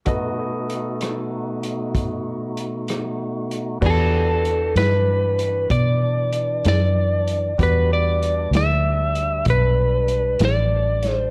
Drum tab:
CC |------------|x-----------|------------|
HH |x-xx-xx-xx-x|--xx-xx-xx-x|x-xx-xx-xx-x|
SD |---r-----r--|---o-----o--|---o-----o-o|
BD |o-----o-----|o-----o-----|o-----o-----|